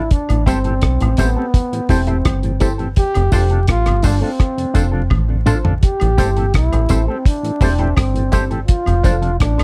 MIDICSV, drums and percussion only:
0, 0, Header, 1, 2, 480
1, 0, Start_track
1, 0, Key_signature, 0, "minor"
1, 0, Tempo, 714711
1, 77, Time_signature, 4, 2, 24, 8
1, 6472, End_track
2, 0, Start_track
2, 0, Title_t, "Drums"
2, 72, Note_on_c, 9, 42, 83
2, 75, Note_on_c, 9, 36, 121
2, 139, Note_off_c, 9, 42, 0
2, 142, Note_off_c, 9, 36, 0
2, 194, Note_on_c, 9, 76, 65
2, 200, Note_on_c, 9, 42, 52
2, 261, Note_off_c, 9, 76, 0
2, 267, Note_off_c, 9, 42, 0
2, 313, Note_on_c, 9, 36, 100
2, 318, Note_on_c, 9, 54, 61
2, 321, Note_on_c, 9, 42, 74
2, 380, Note_off_c, 9, 36, 0
2, 386, Note_off_c, 9, 54, 0
2, 388, Note_off_c, 9, 42, 0
2, 431, Note_on_c, 9, 42, 40
2, 499, Note_off_c, 9, 42, 0
2, 547, Note_on_c, 9, 42, 83
2, 554, Note_on_c, 9, 36, 112
2, 556, Note_on_c, 9, 37, 113
2, 615, Note_off_c, 9, 42, 0
2, 621, Note_off_c, 9, 36, 0
2, 624, Note_off_c, 9, 37, 0
2, 675, Note_on_c, 9, 42, 54
2, 686, Note_on_c, 9, 76, 74
2, 742, Note_off_c, 9, 42, 0
2, 753, Note_off_c, 9, 76, 0
2, 786, Note_on_c, 9, 42, 80
2, 795, Note_on_c, 9, 36, 93
2, 798, Note_on_c, 9, 54, 84
2, 853, Note_off_c, 9, 42, 0
2, 862, Note_off_c, 9, 36, 0
2, 865, Note_off_c, 9, 54, 0
2, 1034, Note_on_c, 9, 36, 118
2, 1036, Note_on_c, 9, 42, 90
2, 1101, Note_off_c, 9, 36, 0
2, 1103, Note_off_c, 9, 42, 0
2, 1162, Note_on_c, 9, 42, 52
2, 1229, Note_off_c, 9, 42, 0
2, 1269, Note_on_c, 9, 46, 62
2, 1271, Note_on_c, 9, 36, 101
2, 1279, Note_on_c, 9, 54, 53
2, 1336, Note_off_c, 9, 46, 0
2, 1338, Note_off_c, 9, 36, 0
2, 1346, Note_off_c, 9, 54, 0
2, 1389, Note_on_c, 9, 42, 41
2, 1456, Note_off_c, 9, 42, 0
2, 1511, Note_on_c, 9, 42, 86
2, 1513, Note_on_c, 9, 36, 118
2, 1514, Note_on_c, 9, 37, 115
2, 1514, Note_on_c, 9, 76, 80
2, 1578, Note_off_c, 9, 42, 0
2, 1581, Note_off_c, 9, 36, 0
2, 1581, Note_off_c, 9, 37, 0
2, 1582, Note_off_c, 9, 76, 0
2, 1633, Note_on_c, 9, 42, 46
2, 1700, Note_off_c, 9, 42, 0
2, 1748, Note_on_c, 9, 42, 82
2, 1754, Note_on_c, 9, 36, 101
2, 1755, Note_on_c, 9, 54, 72
2, 1815, Note_off_c, 9, 42, 0
2, 1821, Note_off_c, 9, 36, 0
2, 1822, Note_off_c, 9, 54, 0
2, 1874, Note_on_c, 9, 42, 33
2, 1942, Note_off_c, 9, 42, 0
2, 1990, Note_on_c, 9, 42, 84
2, 1995, Note_on_c, 9, 36, 124
2, 2057, Note_off_c, 9, 42, 0
2, 2062, Note_off_c, 9, 36, 0
2, 2112, Note_on_c, 9, 76, 73
2, 2117, Note_on_c, 9, 42, 54
2, 2179, Note_off_c, 9, 76, 0
2, 2184, Note_off_c, 9, 42, 0
2, 2229, Note_on_c, 9, 54, 63
2, 2231, Note_on_c, 9, 36, 97
2, 2238, Note_on_c, 9, 46, 57
2, 2296, Note_off_c, 9, 54, 0
2, 2299, Note_off_c, 9, 36, 0
2, 2305, Note_off_c, 9, 46, 0
2, 2349, Note_on_c, 9, 42, 37
2, 2416, Note_off_c, 9, 42, 0
2, 2468, Note_on_c, 9, 42, 96
2, 2474, Note_on_c, 9, 36, 121
2, 2477, Note_on_c, 9, 37, 117
2, 2535, Note_off_c, 9, 42, 0
2, 2541, Note_off_c, 9, 36, 0
2, 2544, Note_off_c, 9, 37, 0
2, 2591, Note_on_c, 9, 42, 51
2, 2593, Note_on_c, 9, 37, 60
2, 2602, Note_on_c, 9, 76, 72
2, 2659, Note_off_c, 9, 42, 0
2, 2660, Note_off_c, 9, 37, 0
2, 2669, Note_off_c, 9, 76, 0
2, 2703, Note_on_c, 9, 46, 85
2, 2711, Note_on_c, 9, 54, 75
2, 2714, Note_on_c, 9, 36, 84
2, 2770, Note_off_c, 9, 46, 0
2, 2778, Note_off_c, 9, 54, 0
2, 2781, Note_off_c, 9, 36, 0
2, 2953, Note_on_c, 9, 36, 116
2, 2953, Note_on_c, 9, 37, 78
2, 2957, Note_on_c, 9, 42, 88
2, 3020, Note_off_c, 9, 36, 0
2, 3021, Note_off_c, 9, 37, 0
2, 3024, Note_off_c, 9, 42, 0
2, 3078, Note_on_c, 9, 42, 60
2, 3145, Note_off_c, 9, 42, 0
2, 3189, Note_on_c, 9, 36, 97
2, 3189, Note_on_c, 9, 42, 94
2, 3194, Note_on_c, 9, 54, 57
2, 3256, Note_off_c, 9, 36, 0
2, 3256, Note_off_c, 9, 42, 0
2, 3261, Note_off_c, 9, 54, 0
2, 3427, Note_on_c, 9, 76, 75
2, 3431, Note_on_c, 9, 48, 63
2, 3432, Note_on_c, 9, 36, 121
2, 3494, Note_off_c, 9, 76, 0
2, 3498, Note_off_c, 9, 48, 0
2, 3499, Note_off_c, 9, 36, 0
2, 3670, Note_on_c, 9, 45, 95
2, 3671, Note_on_c, 9, 54, 70
2, 3737, Note_off_c, 9, 45, 0
2, 3738, Note_off_c, 9, 54, 0
2, 3792, Note_on_c, 9, 43, 91
2, 3860, Note_off_c, 9, 43, 0
2, 3913, Note_on_c, 9, 42, 94
2, 3915, Note_on_c, 9, 36, 117
2, 3980, Note_off_c, 9, 42, 0
2, 3982, Note_off_c, 9, 36, 0
2, 4028, Note_on_c, 9, 76, 67
2, 4038, Note_on_c, 9, 42, 50
2, 4095, Note_off_c, 9, 76, 0
2, 4105, Note_off_c, 9, 42, 0
2, 4152, Note_on_c, 9, 36, 105
2, 4152, Note_on_c, 9, 54, 62
2, 4162, Note_on_c, 9, 42, 74
2, 4219, Note_off_c, 9, 54, 0
2, 4220, Note_off_c, 9, 36, 0
2, 4229, Note_off_c, 9, 42, 0
2, 4275, Note_on_c, 9, 42, 40
2, 4342, Note_off_c, 9, 42, 0
2, 4391, Note_on_c, 9, 42, 87
2, 4394, Note_on_c, 9, 36, 126
2, 4400, Note_on_c, 9, 37, 107
2, 4458, Note_off_c, 9, 42, 0
2, 4462, Note_off_c, 9, 36, 0
2, 4467, Note_off_c, 9, 37, 0
2, 4517, Note_on_c, 9, 76, 75
2, 4519, Note_on_c, 9, 42, 55
2, 4584, Note_off_c, 9, 76, 0
2, 4586, Note_off_c, 9, 42, 0
2, 4626, Note_on_c, 9, 42, 77
2, 4629, Note_on_c, 9, 54, 74
2, 4634, Note_on_c, 9, 36, 85
2, 4694, Note_off_c, 9, 42, 0
2, 4696, Note_off_c, 9, 54, 0
2, 4702, Note_off_c, 9, 36, 0
2, 4873, Note_on_c, 9, 36, 120
2, 4877, Note_on_c, 9, 42, 97
2, 4940, Note_off_c, 9, 36, 0
2, 4944, Note_off_c, 9, 42, 0
2, 5000, Note_on_c, 9, 42, 54
2, 5067, Note_off_c, 9, 42, 0
2, 5109, Note_on_c, 9, 36, 109
2, 5109, Note_on_c, 9, 46, 63
2, 5113, Note_on_c, 9, 54, 54
2, 5176, Note_off_c, 9, 46, 0
2, 5177, Note_off_c, 9, 36, 0
2, 5180, Note_off_c, 9, 54, 0
2, 5228, Note_on_c, 9, 42, 38
2, 5295, Note_off_c, 9, 42, 0
2, 5350, Note_on_c, 9, 76, 77
2, 5353, Note_on_c, 9, 36, 127
2, 5354, Note_on_c, 9, 42, 85
2, 5356, Note_on_c, 9, 37, 125
2, 5417, Note_off_c, 9, 76, 0
2, 5420, Note_off_c, 9, 36, 0
2, 5421, Note_off_c, 9, 42, 0
2, 5424, Note_off_c, 9, 37, 0
2, 5478, Note_on_c, 9, 42, 42
2, 5545, Note_off_c, 9, 42, 0
2, 5587, Note_on_c, 9, 42, 72
2, 5592, Note_on_c, 9, 54, 73
2, 5593, Note_on_c, 9, 36, 91
2, 5655, Note_off_c, 9, 42, 0
2, 5659, Note_off_c, 9, 54, 0
2, 5660, Note_off_c, 9, 36, 0
2, 5715, Note_on_c, 9, 42, 31
2, 5782, Note_off_c, 9, 42, 0
2, 5832, Note_on_c, 9, 42, 88
2, 5835, Note_on_c, 9, 36, 119
2, 5899, Note_off_c, 9, 42, 0
2, 5902, Note_off_c, 9, 36, 0
2, 5952, Note_on_c, 9, 76, 64
2, 5959, Note_on_c, 9, 42, 50
2, 6020, Note_off_c, 9, 76, 0
2, 6027, Note_off_c, 9, 42, 0
2, 6073, Note_on_c, 9, 36, 108
2, 6074, Note_on_c, 9, 54, 59
2, 6079, Note_on_c, 9, 42, 77
2, 6140, Note_off_c, 9, 36, 0
2, 6141, Note_off_c, 9, 54, 0
2, 6146, Note_off_c, 9, 42, 0
2, 6196, Note_on_c, 9, 42, 40
2, 6263, Note_off_c, 9, 42, 0
2, 6314, Note_on_c, 9, 42, 93
2, 6316, Note_on_c, 9, 36, 108
2, 6323, Note_on_c, 9, 37, 105
2, 6381, Note_off_c, 9, 42, 0
2, 6383, Note_off_c, 9, 36, 0
2, 6390, Note_off_c, 9, 37, 0
2, 6442, Note_on_c, 9, 42, 49
2, 6444, Note_on_c, 9, 37, 65
2, 6444, Note_on_c, 9, 76, 81
2, 6472, Note_off_c, 9, 37, 0
2, 6472, Note_off_c, 9, 42, 0
2, 6472, Note_off_c, 9, 76, 0
2, 6472, End_track
0, 0, End_of_file